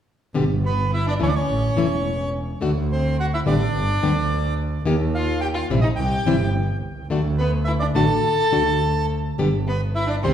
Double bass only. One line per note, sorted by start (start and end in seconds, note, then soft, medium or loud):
0.35 1.16 G1 medium
1.20 1.44 D2 medium
1.48 1.72 A1 medium
1.77 2.57 E1 medium
2.62 3.42 D2 medium
3.46 3.70 A1 medium
3.74 3.98 G1 medium
4.02 4.82 D2 medium
4.85 5.65 D#2 medium
5.70 5.93 A#1 medium
5.97 6.21 C2 medium
6.25 6.81 G1 medium
6.81 7.08 C2 medium
7.09 7.91 D2 medium
7.95 8.19 A1 medium
8.53 9.34 D2 medium
9.39 10.20 G1 medium
10.25 10.34 D2 medium